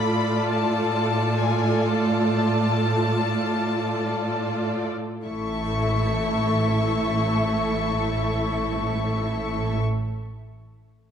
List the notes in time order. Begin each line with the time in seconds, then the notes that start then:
Already playing: A2 A3 F4 A4 D5 B5
0.51 A5
1.37 G#5
1.86 A5
5.24 A1 A2 A3 E4 A4 E5 C#6